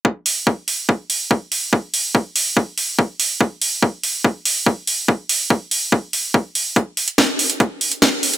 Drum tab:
HH |--o---o---o---o-|--o---o---o---o-|--o---o---o---o-|--o---o---o---o-|
SD |----------------|----------------|----------------|----------------|
BD |o---o---o---o---|o---o---o---o---|o---o---o---o---|o---o---o---o---|

HH |x-oxx-oxx-oxx-ox|
SD |----o-------o---|
BD |o---o---o---o---|